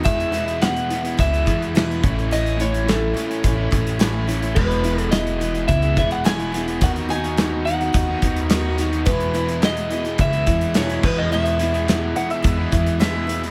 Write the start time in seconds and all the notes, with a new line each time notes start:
0.03 E2 B2 E3 G#3 B3 E4 E5, kick, closed hi-hat
0.20 closed hi-hat
0.31 E2 B2 E3 G#3 B3 E4, closed hi-hat
0.46 E3 G#3 B3 E4, closed hi-hat
0.61 E2 B2 E3 G#3 B3 E4 F#5, snare, closed hi-hat
0.76 closed hi-hat
0.89 E3 G#3 B3 E4, closed hi-hat
1.02 E3 G#3 B3 E4, closed hi-hat
1.17 C#2 E3 G#3 B3 E4 E5, kick, closed hi-hat
1.31 E3 G#3 B3 E4, closed hi-hat
1.44 E2 E3 G#3 B3 E4, kick, closed hi-hat
1.49 E3
1.62 closed hi-hat
1.74 E2 B2 E3 G#3 B3 E4, snare, closed hi-hat
1.87 E3 G#3 B3 E4
1.91 closed hi-hat
2.01 A1 A2 E3 A3 C#4 E4, kick, closed hi-hat
2.15 A3 C#4 E4
2.19 closed hi-hat
2.28 A2 E3 A3 C#4 E4
2.32 D#5, closed hi-hat
2.46 closed hi-hat
2.56 E3 A3 C#4 E4, closed hi-hat
2.61 A2 E3 C#5
2.71 A3 C#4 E4, closed hi-hat
2.84 A2 E3 A3 C#4 E4
2.88 A4, snare, closed hi-hat
3.14 E3 A3 C#4 E4, closed hi-hat
3.27 A3 C#4 E4, closed hi-hat
3.43 A1 E3 A3 C#4 E4, kick, closed hi-hat
3.56 A3 C#4 E4
3.69 A1 E3 A3 C#4 E4, kick, closed hi-hat
3.75 A3
3.87 closed hi-hat
3.99 A2 E3 A3 C#4 E4, snare, closed hi-hat
4.13 A3 C#4 E4
4.26 E3 A3 C#4 E4, snare, closed hi-hat
4.41 A3 C#4 E4, closed hi-hat
4.55 E1 E2 B2 E3 G#3 B3 E4 B4, kick, crash
4.71 closed hi-hat
4.82 E2 B2 E3 G#3 B3 E4, closed hi-hat
4.96 E3 G#3 B3 E4, closed hi-hat
5.01 A4
5.10 E2 B2 E3 G#3 B3 E4 D#5, snare, closed hi-hat
5.27 closed hi-hat
5.39 E3 G#3 B3 E4, closed hi-hat
5.53 E3 G#3 B3 E4, closed hi-hat
5.68 C#2 E3 G#3 B3 E4 E5, kick, closed hi-hat
5.81 E3 G#3 B3 E4, closed hi-hat
5.95 E1 E3 G#3 B3 E4 E5, kick, closed hi-hat
6.00 E3
6.11 F#5, closed hi-hat
6.24 E2 B2 E3 G#3 B3 E4 G#5, snare, closed hi-hat
6.38 E3 G#3 B3 E4, closed hi-hat
6.53 E3 G#3 B3 E4, snare, closed hi-hat
6.66 E3 G#3 B3 E4, closed hi-hat
6.79 D#2 D#3 B3 D#4 F#4 F#5, kick, closed hi-hat
6.96 closed hi-hat
7.09 D#3 B3 D#4 F#4 G#5, closed hi-hat
7.23 B3 D#4 F#4, closed hi-hat
7.37 D#3 B3 D#4 F#4, snare, closed hi-hat
7.65 D#3 B3 D#4 F#4 F#5, closed hi-hat
7.80 B3 D#4 F#4, closed hi-hat
7.93 D#2 D#3 B3 D#4 F#4, kick, closed hi-hat
8.08 B3 D#4 F#4
8.22 D#2 D#3 B3 D#4 F#4, kick, closed hi-hat
8.36 closed hi-hat
8.49 D#3 B3 D#4 F#4, snare, closed hi-hat
8.64 B3 D#4 F#4
8.77 D#3 B3 D#4 F#4, snare, closed hi-hat
8.91 B3 D#4 F#4, closed hi-hat
9.05 E2 B2 E3 G#3 B3 E4 B4, kick, closed hi-hat
9.20 closed hi-hat
9.34 E2 B2 E3 G#3 B3 E4, closed hi-hat
9.47 E3 G#3 B3 E4, closed hi-hat
9.60 E2 B2 E3 G#3 B3 E4, snare, closed hi-hat
9.65 D#5
9.77 closed hi-hat
9.90 E3 G#3 B3 E4, closed hi-hat
9.94 E3
10.04 E3 G#3 B3 E4, closed hi-hat
10.18 C#2 E3 G#3 B3 E5, kick, closed hi-hat
10.22 E4
10.31 E3 G#3 B3 E4, closed hi-hat
10.46 E2 E3 G#3 B3 E4, kick, closed hi-hat
10.50 E3
10.61 closed hi-hat
10.74 E2 B2 E3 G#3 B3 E4 C#5, snare, closed hi-hat
10.87 E3 G#3 B3 E4, closed hi-hat
11.01 E2 B2 E3 G#3 B3 E4 B4, kick, snare, crash
11.08 E3
11.15 E3 G#3 B3 E4 D#5
11.29 E2 B2 E3 G#3 B3 E4 E5
11.46 closed hi-hat
11.58 E3 G#3 B3 E4, closed hi-hat
11.63 E2 B2 E3
11.72 E3 G#3 B3 E4, closed hi-hat
11.86 E2 B2 E3 G#3 B3 E4, snare, closed hi-hat
12.14 E3 G#3 B3 E4 F#5, closed hi-hat
12.19 E3
12.29 E3 G#3 B3 E4 E5, closed hi-hat
12.42 E2 E3 G#3 B3 E4, kick, closed hi-hat
12.57 E3 G#3 B3 E4
12.72 E2 E3 G#3 B3 E4, kick, closed hi-hat
12.86 closed hi-hat
13.00 E2 B2 E3 G#3 B3 E4 E5, snare, closed hi-hat
13.15 E3 G#3 B3 E4
13.27 E3 G#3 B3 E4, closed hi-hat
13.42 E3 G#3 B3 E4, closed hi-hat